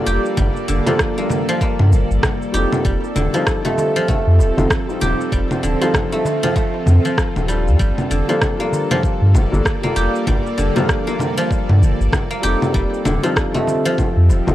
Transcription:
Already playing: guzheng D3 F3 A#3, felt piano G3 A#3 D4 F4 A4, synth drone G3 A#3 A4 D5
0.06 sub bass F1, guzheng G4, cabasa
0.26 cabasa
0.37 sub bass G1, guzheng G3, kick, low conga, cabasa
0.56 cabasa
0.68 sub bass F1, guzheng D3, cabasa
0.86 guzheng F3, felt piano G3 A#3 D4 F4 A4, low conga, cabasa
0.99 kick, cross-stick, cabasa
1.17 felt piano G3 A#3 D4 F4 A4, guzheng A#3, darbuka ka, cabasa
1.30 darbuka tek, darbuka dum, low conga, cabasa
1.49 guzheng F3, cabasa
1.61 guzheng A#3, kick, darbuka ka, darbuka tek, cabasa
1.79 sub bass G2, darbuka ka, low conga
1.92 sub bass F1, darbuka dum, cabasa
2.11 sub bass G1, cabasa
2.23 kick, cross-stick, low conga, cabasa
2.42 cabasa
2.52 sub bass F1, felt piano G3 C4 D#4 F4, guzheng G4, darbuka ka, cabasa
2.56 felt piano A4
2.73 low conga, cabasa
2.85 sub bass F1, synth drone F3 C4 G4, guzheng G3, kick, cabasa
3.04 cabasa
3.16 sub bass D#1, guzheng D3, low conga, cabasa
3.33 guzheng F3, felt piano G3 C4 D#4 F4 A4, cabasa
3.47 kick, cross-stick, cabasa
3.63 felt piano G3 C4 F4 D#5, guzheng A3, darbuka ka, low conga, cabasa
3.68 felt piano A4
3.78 darbuka tek, darbuka dum, cabasa
3.96 guzheng F3, cabasa
4.08 guzheng A3, kick, low conga, cabasa
4.27 sub bass F2
4.39 sub bass D#1, darbuka tek, cabasa
4.57 sub bass F1, felt piano G3 C4 D#4 F4 A4, darbuka dum, low conga, cabasa
4.70 kick, cross-stick, cabasa
4.87 felt piano G3 C4 D#4 F4, cabasa
4.91 felt piano A4
5.01 sub bass D#1, guzheng G4, low conga, cabasa
5.21 cabasa
5.32 sub bass F1, guzheng G3, synth drone F4, kick, cabasa
5.51 low conga, cabasa
5.63 sub bass D#1, guzheng D3, cabasa
5.81 guzheng F3, felt piano G3 C4 D#4 F4 A4, cabasa
5.94 kick, cross-stick, low conga, cabasa
6.12 felt piano G3 C4 D#4 F4 A4, guzheng A3, darbuka ka, cabasa
6.25 darbuka tek, darbuka dum, cabasa
6.43 guzheng F3, low conga, cabasa
6.56 guzheng A3, kick, darbuka ka, darbuka tek, cabasa
6.74 darbuka ka
6.86 sub bass F2, darbuka dum, low conga, cabasa
7.05 guzheng F3, cabasa
7.18 kick, cross-stick, cabasa
7.36 sub bass D#1, low conga, cabasa
7.47 felt piano G3 D4 F4, guzheng G3, darbuka ka, darbuka tek, cabasa
7.51 felt piano A4
7.67 sub bass F2, cabasa
7.79 sub bass G1, guzheng G3, synth drone G3 A#3 D5, kick, cabasa
7.98 low conga, cabasa
8.11 sub bass F1, guzheng D3, cabasa
8.28 guzheng F3, felt piano G3 A#3 D4 F4 A4, cabasa
8.41 kick, cross-stick, low conga, cabasa
8.58 felt piano G3 A#3 D4 F4, guzheng A#3, darbuka ka, cabasa
8.62 felt piano A4
8.73 darbuka tek, darbuka dum, cabasa
8.91 guzheng F3, low conga, cabasa
9.03 kick, cabasa
9.22 sub bass G2
9.34 sub bass F1, darbuka tek, low conga, cabasa
9.52 sub bass G1, felt piano G3 A#3 D4 F4 A4, darbuka dum, cabasa
9.65 kick, cross-stick, cabasa
9.82 felt piano G3 A#3 D4 F4 A4, guzheng A#3, low conga, cabasa
9.96 sub bass F1, guzheng G4, cabasa
10.16 cabasa
10.27 sub bass G1, guzheng G3, kick, low conga, cabasa
10.47 cabasa
10.58 sub bass F1, guzheng D3, cabasa
10.75 guzheng F3, felt piano G3 A#3 D4 F4 A4, low conga, cabasa
10.89 kick, cross-stick, cabasa
11.06 felt piano G3 A#3 D4 F4 A4, guzheng A#3, darbuka ka, cabasa
11.19 darbuka tek, darbuka dum, low conga, cabasa
11.38 guzheng F3, cabasa
11.50 kick, darbuka ka, darbuka tek, cabasa
11.69 sub bass G2, darbuka ka, low conga
11.82 sub bass F1, darbuka dum, cabasa
12.00 sub bass G1, cabasa
12.13 kick, cross-stick, low conga, cabasa
12.31 guzheng A#3, cabasa
12.42 sub bass F1, felt piano G3 C4 D#4 F4 A4, guzheng G4, darbuka ka, cabasa
12.62 low conga, cabasa
12.74 sub bass F1, synth drone F3 C4 G4 A4, guzheng G3, kick, cabasa
12.94 cabasa
13.05 sub bass D#1, guzheng D3, low conga, cabasa
13.23 guzheng F3, felt piano G3 C4 D#4 F4 A4, cabasa
13.36 kick, cross-stick, cabasa
13.53 felt piano G3 C4 F4 A4 D#5, guzheng A3, darbuka ka, low conga, cabasa
13.67 darbuka tek, darbuka dum, cabasa
13.85 guzheng F3, cabasa
13.98 kick, low conga, cabasa
14.17 sub bass F2
14.29 sub bass D#1, darbuka tek, cabasa
14.47 sub bass F1, felt piano G3 C4 D#4 F4 A4, darbuka dum, low conga, cabasa

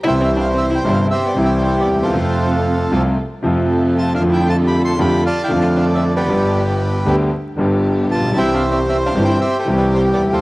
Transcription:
0.04 double bass C2, grand piano C2 C3 E3 G3, string section C4 E4 G4, violin E4, bandoneon G5
0.08 grand piano E4, bandoneon C5 E5
0.21 violin C4, bandoneon E5
0.36 violin D4
0.41 bandoneon F5
0.54 violin C4, bandoneon E5
0.70 violin E4
0.75 bandoneon G5
0.84 double bass G1, grand piano G1 G2 C3 E3 G3 E4, string section C4 E4 G4
0.88 violin D4
0.93 bandoneon F5
1.07 violin C4, bandoneon E5
1.12 bandoneon G4 C5
1.25 violin B3, bandoneon D5
1.35 double bass C2, grand piano C2 C3 E3 G3 E4, string section C4 E4 G4
1.42 violin C4, bandoneon E5
1.60 violin G3, bandoneon C5
1.77 violin B3, bandoneon D5
1.87 double bass D#2
1.95 grand piano D2
2.00 grand piano D#2, violin A3, bandoneon A4 C5
2.04 grand piano E2, bandoneon F4
2.12 double bass F2, grand piano F2 C3 F3 A3 F4, string section C4 F4 A4
2.91 double bass C2, grand piano C2 C3 F3 A3 F4, string section C4 F4 A4
3.43 double bass F2, grand piano F2 C3 F3 A3 F4, string section C4 F4 A4
3.97 violin F4, bandoneon A5
4.14 violin D4, bandoneon F5
4.20 double bass F2, grand piano F2 D3 F3 A3 F4, string section D4 F4 A4
4.30 violin E4, bandoneon G5
4.46 violin F4, bandoneon A5
4.64 violin G4, bandoneon B5
4.82 violin A4, bandoneon C6
4.99 double bass F2, grand piano F2 D3 F3 A3 F4, string section D4 F4 A4, violin G4, bandoneon B5
5.26 violin F4, bandoneon D5 F5 A5
5.44 violin E4, bandoneon G5
5.48 grand piano F2 D3 F3 A3, double bass F2, string section D4 F4 A4
5.52 grand piano F4
5.60 violin F4, bandoneon A5
5.76 violin D4, bandoneon F5
5.95 violin C4, bandoneon E5
6.16 violin B3, bandoneon G4 B4 D5
6.26 double bass G1, grand piano G1 G2 D3 G3 B3 G4, string section B3 D4 G4
7.05 double bass D2, grand piano D2 D3 G3 B3 G4, string section B3 D4 G4
7.57 double bass G1, grand piano G1 G2 D3 G3 B3 G4, string section B3 D4 G4
8.11 double bass A#1, violin F4, bandoneon A5
8.19 grand piano A1
8.25 grand piano A#1
8.31 grand piano B1 E3
8.36 double bass C2, grand piano C2 C3 G3 C4 G4, string section C4 E4 G4, violin E4, bandoneon C5 E5 G5
8.54 violin D4, bandoneon F5
8.71 violin C4, bandoneon E5
8.89 violin C4, bandoneon E5
9.06 violin D4, bandoneon F5
9.15 double bass G1, grand piano G1 G2 E3 G3 C4 G4, string section C4 E4 G4
9.24 violin E4, bandoneon G5
9.40 violin C4, bandoneon G4 C5 E5
9.59 violin A3, bandoneon C5
9.65 double bass C2, grand piano C2 C3 E3 G3 C4, string section C4 E4 G4
9.70 grand piano G4
9.78 violin G3, bandoneon B4
9.95 violin G3, bandoneon C5
10.13 violin B3, bandoneon D5
10.20 double bass D#2
10.25 grand piano D2
10.32 grand piano D#2, violin A3, bandoneon F4 A4 C5

